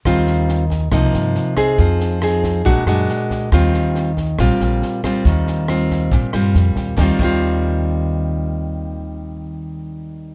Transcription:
<<
  \new Staff \with { instrumentName = "Nylon-string guitar" } { \time 4/4 \key ees \major \tempo 4 = 139 << { <g c' f'>4. r8 <f bes ees'>4. <c' ees' aes'>8~ | <c' ees' aes'>4 <c' ees' aes'>4 <aes d' fis'>8 <aes d' fis'>4. | <g c' f'>4. r8 <g c' f'>4. <g c' f'>8~ | <g c' f'>4 <g c' f'>4. <g c' f'>4. |
<ees g c' f'>8 <ees g c' f'>2.~ <ees g c' f'>8~ | <ees g c' f'>1 | } \\ { ees2 c2 | f2 bes,2 | ees2 bes,2 | ees2 bes,2 |
r1 | r1 | } >> }
  \new Staff \with { instrumentName = "Upright bass" } { \clef bass \time 4/4 \key ees \major ees,2 c,16 r16 g,8 r4 | f,2 bes,,16 r16 fis,8 r4 | ees,2 bes,,16 r16 bes,,8 r4 | ees,2 bes,,16 r16 g,8 f,8 ees,8 |
ees,8 ees,2.~ ees,8~ | ees,1 | }
  \new DrumStaff \with { instrumentName = "Drums" } \drummode { \time 4/4 <bd ss sn>8 sn8 sn8 <bd sn>8 <bd ss sn>8 sn8 sn8 <bd ss sn>8 | <bd sn>8 sn8 <ss sn>8 <bd sn>8 <bd sn>8 <ss sn>8 sn8 <bd sn>8 | <bd ss sn>8 sn8 sn8 <bd sn>8 <bd ss sn>8 sn8 sn8 <bd ss sn>8 | <bd sn>8 sn8 <ss sn>8 <bd sn>8 <bd sn>8 <ss sn>8 sn8 <bd sn>8 |
<bd sn>8 <cymc bd>8 r4 r4 r4 | r4 r4 r4 r4 | }
>>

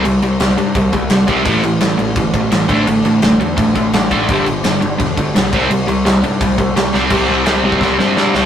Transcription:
<<
  \new Staff \with { instrumentName = "Overdriven electric guitar" } { \clef bass \time 4/4 \key c \lydian \tempo 4 = 170 <c g>8 <c g>8 <c g>8 <c g>8 <c g>8 <c g>8 <c g>8 <c g c'>8 | <a, e a>8 <a, e>8 <a, e>8 <a, e>8 <a, e>8 <a, e>8 <a, e>8 <d a d'>8 | <d a>8 <d a>8 <d a>8 <d a>8 <d a>8 <d a>8 <d a>8 <d a d'>8 | <g, d g>8 <g, d>8 <g, d>8 <g, d>8 <g, d>8 <g, d>8 <g, d>8 <c g c'>8 |
<c g>8 <c g>8 <c g>8 <c g>8 <c g>8 <c g>8 <c g>8 <c g c'>8 | <c g c'>8 <c g c'>8 <c g c'>8 <c g c'>8 <c g c'>8 <c g c'>8 <c g c'>8 <c g c'>8 | }
  \new Staff \with { instrumentName = "Picked electric bass" } { \clef bass \time 4/4 \key c \lydian c,8 c,8 c,8 g,8 c,8 c,8 c,8 c,8 | a,,8 a,,8 a,,8 a,,8 g,,8 a,,8 a,,8 a,,8 | a,,8 a,,8 a,,8 e,8 a,,8 a,,8 a,,8 a,,8 | g,,8 g,,8 g,,8 g,,8 e,,8 g,,8 b,,8 c,8 |
c,8 c,8 c,8 g,8 c,8 c,8 c,8 c,8 | c,8 c,8 c,8 c,8 c,8 g,8 g,8 c,8 | }
  \new DrumStaff \with { instrumentName = "Drums" } \drummode { \time 4/4 cymc8 cymc8 <cymc sn>8 cymc8 <cymc bd>8 <cymc bd>8 <cymc sn>8 <cymc bd>8 | <cymc bd>8 cymc8 <cymc sn>8 cymc8 <cymc bd>8 <cymc bd>8 <cymc sn>8 <cymc bd>8 | cymc8 cymc8 <cymc sn>8 cymc8 <cymc bd>8 <cymc bd>8 <cymc sn>8 <cymc bd>8 | <cymc bd>8 cymc8 <cymc sn>8 cymc8 <cymc bd>8 <cymc bd>8 <cymc sn>8 <cymc bd>8 |
cymc8 cymc8 <cymc sn>8 cymc8 <cymc bd>8 <cymc bd>8 <cymc sn>8 sn8 | <cymc bd>4 <cymc sn>8. bd16 <bd sn>8 sn8 sn8 sn8 | }
>>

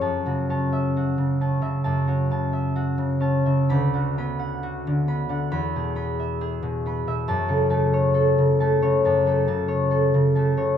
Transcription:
<<
  \new Staff \with { instrumentName = "Harp" } { \time 4/4 \key fis \minor \tempo 4 = 67 << { a''1 | b''2 b''2 | a''1 | } \\ { cis''16 fis'16 a''16 e''16 fis'16 cis16 a''16 e''16 a''16 fis'16 a''16 e''16 fis'16 cis16 a''16 e''16 | r16 fis'16 b''16 fis''16 fis'16 d16 b''16 fis''16 r16 gis'16 b''16 e''16 gis'16 b,16 b''16 e''16 | r16 a'16 a''16 cis''16 a'16 cis16 a''16 cis''16 a''16 a'16 a''16 cis''16 a'16 cis16 a''16 cis''16 | } >> }
  \new Staff \with { instrumentName = "Harp" } { \clef bass \time 4/4 \key fis \minor <fis, cis'>16 cis16 cis'4 cis'16 cis16 fis,16 cis'16 cis4 cis'16 cis16 | d,16 d16 b4 b16 d16 e,16 b,16 b4 b16 b,16 | fis,16 cis16 a4 a16 cis16 fis,16 a16 cis4 a16 cis16 | }
>>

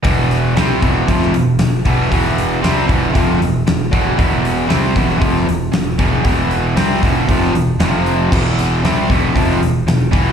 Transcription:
<<
  \new Staff \with { instrumentName = "Overdriven electric guitar" } { \clef bass \time 4/4 \key e \phrygian \tempo 4 = 116 <e, b, e>4 <c g c'>8 <e, b, e>8 <f, c f>8 <e, b,>8 <e, b,>8 <e, b, e>8 | <e, b, e>4 <c g c'>8 <e, b, e>8 <f, c f>8 <e, b,>8 <e, b,>8 <e, b, e>8 | <e, b, e>4 <c g c'>8 <e, b, e>8 <f, c f>8 <e, b,>8 <e, b,>8 <e, b, e>8 | <e, b, e>4 <c g c'>8 <e, b, e>8 <f, c f>8 <e, b,>8 <f, c f>4 |
<e, b, e>4 <c g c'>8 <e, b, e>8 <f, c f>8 <e, b,>8 <e, b,>8 <e, b, e>8 | }
  \new Staff \with { instrumentName = "Fingered electric bass" } { \clef bass \time 4/4 \key e \phrygian e,,4 c,8 e,,8 f,,8 e,,8 e,,8 e,,8 | e,,4 c,8 e,,8 f,,8 e,,8 e,,8 e,,8 | e,,4 c,8 e,,8 f,,8 e,,8 e,,8 e,,8 | e,,4 c,8 e,,8 f,,8 e,,8 f,,4 |
e,,4 c,8 e,,8 f,,8 e,,8 e,,8 e,,8 | }
  \new DrumStaff \with { instrumentName = "Drums" } \drummode { \time 4/4 <hho bd>8 hho8 <hho sn>8 <hho bd>8 <hho bd>16 sn16 hho8 <hho sn>8 <hho bd>8 | <hho bd>8 hho8 <hho sn>8 <hho bd>8 <hho bd>8 hho8 <hho sn>8 <hho bd>8 | <hho bd>8 hho8 <hho sn>8 <hho bd>8 <hho bd>16 sn16 hho8 <hho sn>8 <hho bd>8 | <hho bd>8 hho8 <hho sn>8 <hho bd>8 <hho bd>16 sn16 hho8 <hho sn>8 hho8 |
<cymc bd>8 hho8 <hho sn>8 <hho bd>8 <hho bd>16 sn16 hho8 <hho sn>8 <hho bd>8 | }
>>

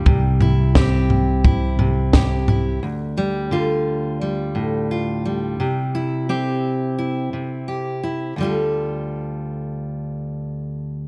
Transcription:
<<
  \new Staff \with { instrumentName = "Steel-string acoustic guitar" } { \time 4/4 \key d \minor \tempo 4 = 87 << { g8 e'8 g'4 e'4 g'8 e'8 | r8 g8 f'4 g4 f'8 g8~ | g8 e'8 g'4 e'4 g'8 e'8 | <d g f' a'>1 | } \\ { c4 c'4. c4. | d,4 d4. a,4. | c4 c'4. c4. | d,1 | } >> }
  \new Staff \with { instrumentName = "Fingered electric bass" } { \clef bass \time 4/4 \key d \minor c,1 | r1 | r1 | r1 | }
  \new DrumStaff \with { instrumentName = "Drums" } \drummode { \time 4/4 <bd tomfh>8 tomfh8 <bd sn tomfh>8 tomfh8 <bd tomfh>8 tomfh8 <bd sn tomfh>8 tomfh8 | r4 r4 r4 r4 | r4 r4 r4 r4 | r4 r4 r4 r4 | }
>>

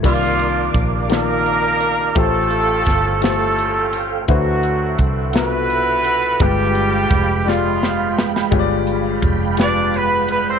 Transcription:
<<
  \new Staff \with { instrumentName = "Tonewheel organ" } { \time 6/8 \key g \phrygian \tempo 4. = 57 <bes' d'' f'' d'''>2. | <a' eis'' g''>2. | <a' e'' fis''>2. | <aes f'' g'' b''>2.~ |
<aes f'' g'' b''>2. | }
  \new Staff \with { instrumentName = "Trumpet" } { \time 6/8 \key g \phrygian f'4 r8 bes'4. | a'4. a'4 r8 | fis'4 r8 b'4. | g'4. f'4 r8 |
r4. d''8 b'8 b'16 c''16 | }
  \new Staff \with { instrumentName = "Grand piano" } { \time 6/8 \key g \phrygian <ees bes f' d''>4 r8 <ees bes f' d''>4 r8 | <a eis' g' bis'>4 r8 <a eis' g' bis'>4 r8 | <e' fis' b' c''>4 r8 <b, e' f' fis' b'>4 r8 | <aes f' g' b'>4 r8 <aes f' g' d''>4 r8 |
<aes f' g' des'' d''>4 r8 <aes f' g' b'>4 r8 | }
  \new Staff \with { instrumentName = "Grand piano" } { \clef bass \time 6/8 \key g \phrygian c4. r4. | a,4. r4. | d4. r4. | g,4. r4. |
g,4. r4. | }
  \new Staff \with { instrumentName = "Horn section" } { \time 6/8 \key g \phrygian << { <f f'>4 r8 <bes bes'>4. | <a a'>4. <a a'>4 r8 | <fis fis'>4 r8 <b b'>4. | <g g'>4. <f f'>4 r8 |
r4. <d' d''>8 <b b'>8 <b b'>16 <c' c''>16 | } \\ { <bes d'>4. <d' ees'>4. | <bis cis'>4. <bis cis'>4. | <a c'>4. <e' fis'>4. | <b d'>4. <aes b>4. |
r2. | } >> }
  \new Staff \with { instrumentName = "Fingered electric bass" } { \clef bass \time 6/8 \key g \phrygian c,4 bes,,2 | a,,4 g,,2 | d,4 c,2 | g,,4 f,,2 |
g,,4 f,,2 | }
  \new DrumStaff \with { instrumentName = "Drums" } \drummode { \time 6/8 <cymc bd>8 hh8 <hh bd>8 <hh sn>8 hh8 hh8 | <hh bd>8 hh8 <hh bd sn>8 <hh sn>8 hh8 hh8 | <hh bd>8 hh8 <hh bd>8 <hh sn>8 hh8 hh8 | <hh bd>8 hh8 <hh bd>8 sn8 sn8 sn16 sn16 |
<hh bd>8 hh8 <hh bd>8 <hh sn>8 hh8 hh8 | }
>>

